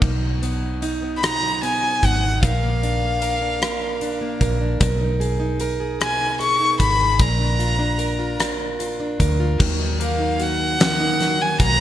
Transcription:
0.00 1.99 B1 medium
0.00 1.21 B2 medium
0.00 0.10 F3 soft
0.00 0.10 A#3 soft
0.00 0.81 D#4 medium
0.00 kick medium
0.00 crash medium
0.22 0.61 F#3 soft
0.42 1.01 B3 soft
0.42 closed hi-hat soft
0.62 1.42 F#3 soft
0.82 1.22 D#4 medium
0.82 closed hi-hat medium
1.02 1.61 B3 soft
1.17 1.26 B5 medium
1.23 2.43 B2 medium
1.23 2.02 D#4 soft
1.23 1.64 A#5 medium
1.23 cross-stick medium
1.23 closed hi-hat medium
1.43 1.81 F#3 medium
1.63 2.22 B3 soft
1.63 2.06 G#5 medium
1.63 cross-stick soft
1.63 closed hi-hat medium
1.82 2.51 F#3 soft
2.03 2.41 G#1 medium
2.03 2.51 D#4 medium
2.03 2.44 F#5 medium
2.03 kick medium
2.03 closed hi-hat medium
2.23 2.51 B3 medium
2.43 4.37 A#1 medium
2.43 3.60 A#2 medium
2.43 3.22 A#4 medium
2.43 4.39 F5 medium
2.43 kick medium
2.43 closed hi-hat medium
2.63 3.02 A#3 soft
2.83 3.40 D4 soft
2.83 closed hi-hat soft
3.03 3.81 A#3 soft
3.22 3.61 A#4 medium
3.22 closed hi-hat medium
3.42 4.00 D4 soft
3.61 4.79 A#2 medium
3.61 4.41 A#4 medium
3.61 cross-stick medium
3.61 closed hi-hat medium
3.81 4.21 A#3 medium
4.01 4.59 D4 soft
4.01 closed hi-hat medium
4.21 5.00 A#3 soft
4.41 4.79 A#1 medium
4.41 4.80 A#4 medium
4.41 kick medium
4.41 closed hi-hat medium
4.61 4.89 D4 soft
4.80 6.76 B1 loud
4.80 5.99 B2 medium
4.80 5.60 A#4 medium
4.80 kick loud
4.80 closed hi-hat medium
5.00 5.39 D#4 medium
5.20 5.79 G#4 soft
5.20 closed hi-hat medium
5.40 6.19 D#4 medium
5.60 6.00 A#4 medium
5.60 closed hi-hat medium
5.80 6.39 G#4 medium
6.00 7.19 B2 medium
6.00 7.03 A#4 medium
6.00 6.38 G#5 medium
6.00 cross-stick loud
6.00 closed hi-hat medium
6.20 6.59 D#4 medium
6.40 6.98 G#4 medium
6.40 6.78 C#6 loud
6.40 closed hi-hat medium
6.60 7.27 D#4 soft
6.80 7.17 G#1 medium
6.80 7.23 B5 loud
6.80 kick medium
6.80 closed hi-hat medium
7.00 7.27 G#4 soft
7.19 9.16 A#1 loud
7.19 8.38 A#2 medium
7.19 7.98 A#4 medium
7.19 8.40 A#5 medium
7.19 kick loud
7.19 closed hi-hat medium
7.39 7.78 D4 soft
7.59 8.18 F4 medium
7.59 closed hi-hat medium
7.79 8.59 D4 medium
7.98 8.39 A#4 medium
7.98 closed hi-hat medium
8.19 8.78 F4 medium
8.39 9.68 A#2 medium
8.39 9.19 A#4 medium
8.39 cross-stick medium
8.39 closed hi-hat medium
8.60 8.99 D4 medium
8.79 9.39 F4 medium
8.79 closed hi-hat medium
9.00 9.68 D4 medium
9.20 9.57 D2 medium
9.20 9.99 A#4 medium
9.20 kick medium
9.20 closed hi-hat medium
9.40 9.68 F4 medium
9.59 11.56 D#2 loud
9.59 10.79 D#3 medium
9.59 10.39 F#3 medium
9.59 kick loud
9.59 crash medium
9.80 10.18 D#4 medium
10.00 10.79 A#3 medium
10.00 10.58 A#4 medium
10.00 10.45 F5 medium
10.00 closed hi-hat medium
10.19 10.99 D#4 medium
10.39 11.19 F#3 soft
10.39 11.58 F#4 medium
10.39 11.43 F#5 medium
10.39 closed hi-hat medium
10.60 11.19 A#4 medium
10.80 11.80 D#3 medium
10.80 11.59 A#3 medium
10.80 snare loud
10.80 closed hi-hat medium
11.00 11.39 D#4 medium
11.20 11.80 F#3 medium
11.20 11.78 A#4 medium
11.20 snare soft
11.20 closed hi-hat medium
11.40 11.80 D#4 medium
11.40 11.61 G#5 medium
11.59 11.80 B1 medium
11.59 11.80 A#3 soft
11.59 11.80 F#4 medium
11.59 11.80 A#5 loud
11.59 kick medium
11.59 closed hi-hat medium

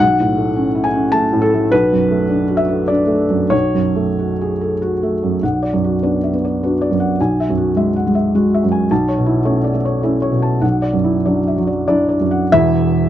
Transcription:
0.00 1.67 B1 medium
0.00 0.84 F#5 loud
0.20 0.50 A2 soft
0.38 0.68 A3 soft
0.56 0.87 C#4 soft
0.75 1.06 E4 soft
0.84 1.13 G#5 medium
0.94 1.25 C#4 soft
1.12 1.45 A3 soft
1.12 1.42 A5 medium
1.33 1.64 A2 medium
1.42 1.72 A4 medium
1.54 1.73 A3 soft
1.72 3.50 B1 medium
1.72 2.59 B4 loud
1.92 2.23 F#2 soft
2.11 2.42 A3 soft
2.29 2.61 D4 soft
2.48 2.81 F#4 soft
2.57 2.89 E5 medium
2.68 3.02 A4 soft
2.88 3.23 D4 soft
2.88 3.52 D5 medium
3.07 3.43 A3 soft
3.30 3.52 F#2 soft
3.50 5.37 B1 medium
3.50 4.79 C#5 medium
3.74 4.09 F#2 soft
3.96 4.30 A3 soft
4.19 4.52 F#4 soft
4.41 4.74 G#4 soft
4.61 4.94 A4 soft
4.82 5.15 F#4 soft
5.03 5.35 A3 soft
5.23 5.43 F#2 soft
5.43 7.15 B1 soft
5.43 5.75 F#5 soft
5.63 5.95 D5 soft
5.73 6.21 F#2 soft
5.84 6.15 F#4 soft
6.03 6.29 B3 soft
6.03 6.29 D4 soft
6.03 6.35 D5 soft
6.24 6.42 E5 soft
6.34 6.62 B3 soft
6.45 6.74 D5 soft
6.63 6.88 B3 soft
6.63 6.88 D4 soft
6.63 6.93 F#4 soft
6.82 7.12 D5 soft
6.91 7.19 F#2 soft
7.00 7.19 F#5 soft
7.21 8.88 B1 soft
7.21 7.50 G#5 soft
7.40 7.70 E5 soft
7.49 7.95 F#2 soft
7.57 7.88 F#4 soft
7.76 8.02 G#3 soft
7.76 8.08 E5 soft
7.96 8.15 F#5 soft
8.07 8.33 G#3 soft
8.15 8.46 E5 soft
8.35 8.60 G#3 soft
8.35 8.65 F#4 soft
8.54 8.84 E5 soft
8.64 8.91 F#2 soft
8.71 8.90 G#5 soft
8.91 10.59 B1 medium
8.91 9.20 A5 medium
9.09 9.38 C#5 soft
9.18 9.63 B2 soft
9.26 9.57 E4 soft
9.45 9.71 A3 soft
9.45 9.71 C#4 soft
9.45 9.76 C#5 soft
9.64 9.83 D5 soft
9.73 10.01 A3 soft
9.85 10.16 C#5 soft
10.03 10.30 A3 soft
10.03 10.30 C#4 soft
10.03 10.35 E4 soft
10.22 10.54 C#5 soft
10.32 10.62 B2 soft
10.42 10.63 A5 soft
10.62 12.46 B1 soft
10.62 10.95 F#5 soft
10.82 11.16 D5 soft
10.93 11.44 F#2 soft
11.04 11.38 E4 soft
11.25 11.54 F#3 soft
11.25 11.54 D4 soft
11.25 11.59 D5 soft
11.48 11.68 E5 soft
11.58 11.87 F#3 soft
11.67 11.86 D5 soft
11.88 12.16 F#3 soft
11.88 12.16 D4 medium
11.88 12.21 E4 soft
11.88 12.07 D5 medium
12.09 12.42 D5 soft
12.20 12.51 F#2 soft
12.31 12.51 F#5 soft
12.52 13.09 E1 medium
12.52 13.09 E2 medium
12.52 13.09 E4 medium
12.52 13.09 E5 loud

